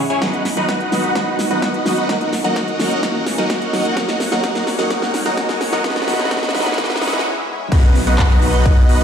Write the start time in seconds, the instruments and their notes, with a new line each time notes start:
Already playing: analog synth pad G#3 C#4 E4 C#5 E5
0.10 supersaw synth C#4 E4 G#4 C#5 G#5, closed hi-hat
0.21 grand piano D#3 F#3 B3 F#4, analog synth pad B3 D#4 F#4 D#5 F#5, supersaw synth D#4 F#4 B4 D#5 F#5, kick, snare, closed hi-hat, riser
0.33 closed hi-hat
0.45 snare, open hi-hat
0.56 grand piano D#3 F#3 B3 F#4, supersaw synth D#4 F#4 B4 D#5 F#5, closed hi-hat
0.69 kick, snare, closed hi-hat
0.80 closed hi-hat
0.91 grand piano D#3 F#3 B3 F#4, snare, open hi-hat
1.04 closed hi-hat
1.15 grand piano D#3 F#3 B3 F#4, supersaw synth D#4 F#4 B4 D#5 F#5, kick, snare, closed hi-hat
1.39 snare, open hi-hat
1.50 grand piano D#3 F#3 B3 F#4, supersaw synth D#4 F#4 B4 D#5 F#5, closed hi-hat
1.62 kick, snare, closed hi-hat
1.74 closed hi-hat
1.85 grand piano D#3 F#3 B3 F#4, snare, open hi-hat
1.98 closed hi-hat
2.09 grand piano D#3 F#3 A#3 F#4, analog synth pad A#3 C#4 F#4 C#5 F#5, supersaw synth D#4 F#4 A#4 D#5 F#5, kick, snare, closed hi-hat
2.21 closed hi-hat
2.33 snare, open hi-hat
2.44 grand piano D#3 F#3 A#3 F#4, supersaw synth D#4 F#4 A#4 D#5 F#5, closed hi-hat
2.56 kick, snare, closed hi-hat
2.68 closed hi-hat
2.79 grand piano D#3 F#3 A#3 F#4, snare, open hi-hat
2.91 closed hi-hat
3.02 grand piano D#3 F#3 A#3 F#4, supersaw synth D#4 F#4 A#4 D#5 F#5, kick, snare, closed hi-hat
3.26 snare, open hi-hat
3.38 grand piano D#3 F#3 A#3 F#4, supersaw synth D#4 F#4 A#4 D#5 F#5, closed hi-hat
3.50 kick, snare, closed hi-hat
3.62 closed hi-hat
3.73 grand piano D#3 F#3 A#3 F#4, snare, open hi-hat
3.85 closed hi-hat
3.96 grand piano D#3 F#3 A#3 F#4, supersaw synth D#4 F#4 A#4 D#5 F#5, analog synth pad D#4, kick, snare, closed hi-hat
4.08 snare, closed hi-hat
4.20 snare, open hi-hat
4.31 grand piano D#3 F#3 A#3 F#4, supersaw synth D#4 F#4 A#4 D#5 F#5, snare, closed hi-hat
4.43 grand piano D#3 F#3 A#3 F#4, supersaw synth D#4 F#4 A#4 D#5 F#5, kick, snare, closed hi-hat
4.55 snare, closed hi-hat
4.67 snare, open hi-hat
4.78 grand piano D#3 F#3 A#3 F#4, supersaw synth D#4 F#4 A#4 D#5 F#5, snare, closed hi-hat
4.90 grand piano D#3 F#3 A#3 F#4, supersaw synth D#4 F#4 A#4 D#5 F#5, kick, snare, closed hi-hat
5.02 snare
5.14 snare, open hi-hat
5.25 grand piano D#3 F#3 A#3 F#4, supersaw synth D#4 F#4 A#4 D#5 F#5, snare, closed hi-hat
5.37 grand piano D#3 F#3 A#3 F#4, supersaw synth D#4 F#4 A#4 D#5 F#5, kick, snare, closed hi-hat
5.49 snare, closed hi-hat
5.61 snare, open hi-hat
5.72 grand piano D#3 F#3 A#3 F#4, supersaw synth D#4 F#4 A#4 D#5 F#5, snare, closed hi-hat
5.84 grand piano D#3 F#3 B3 F#4, analog synth pad G#3 C#4 E4 E5, supersaw synth D#4 F#4 B4 D#5 F#5, kick, snare, closed hi-hat
5.90 snare
5.96 snare, closed hi-hat
6.02 snare
6.07 grand piano D#3 F#3 B3 F#4, supersaw synth D#4 F#4 B4 D#5 F#5, snare, open hi-hat
6.14 snare
6.19 snare, closed hi-hat
6.25 snare
6.31 grand piano D#3 F#3 B3 F#4, supersaw synth D#4 F#4 B4 D#5 F#5, kick, snare, closed hi-hat
6.37 snare
6.43 snare, closed hi-hat
6.49 snare
6.54 grand piano D#3 F#3 B3 F#4, supersaw synth D#4 F#4 B4 D#5 F#5, snare, open hi-hat
6.60 snare
6.66 snare, closed hi-hat
6.72 snare
6.77 grand piano D#3 F#3 B3 F#4, supersaw synth D#4 F#4 B4 D#5 F#5, kick, snare, closed hi-hat
6.84 snare
6.90 snare, closed hi-hat
6.96 snare
7.01 grand piano D#3 F#3 B3 F#4, supersaw synth D#4 F#4 B4 D#5 F#5, snare, open hi-hat
7.07 snare
7.13 snare, closed hi-hat
7.19 snare
7.72 detuned saw bass B1, analog synth pad F#3 B3 D#4 B4 D#5, supersaw synth D#4 F#4 B4 D#5 F#5, kick, closed hi-hat, crash, ride, downlifter
7.84 closed hi-hat
7.95 open hi-hat
8.07 detuned saw bass B1, supersaw synth D#4 F#4 B4 D#5 F#5, closed hi-hat
8.19 kick, clap, closed hi-hat, ride
8.30 clap, closed hi-hat
8.42 open hi-hat
8.54 closed hi-hat
8.66 kick, closed hi-hat, ride
8.77 closed hi-hat
8.89 detuned saw bass B1, supersaw synth D#4 F#4 B4 D#5 F#5, open hi-hat
9.01 detuned saw bass B1, supersaw synth D#4 F#4 B4 D#5 F#5, closed hi-hat